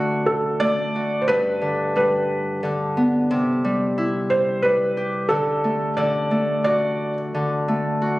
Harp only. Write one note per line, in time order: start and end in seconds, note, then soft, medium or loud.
0.00 1.34 D3 medium
0.00 0.60 A3 soft
0.00 0.95 F#4 medium
0.61 3.94 A3 soft
0.96 1.35 F#4 soft
1.29 3.36 G2 medium
1.61 2.62 D3 medium
1.96 2.69 G3 medium
2.63 3.36 D3 medium
2.97 3.37 B3 medium
3.31 5.36 C3 medium
3.65 4.63 G3 medium
3.98 6.59 E4 medium
4.64 5.36 G3 soft
4.97 6.72 G4 medium
5.30 5.96 D3 medium
5.64 6.31 A3 soft
5.97 7.33 D3 medium
6.31 7.68 A3 soft
6.66 8.01 F#4 medium
7.34 8.19 D3 medium
7.68 8.19 A3 soft
8.02 8.19 F#4 soft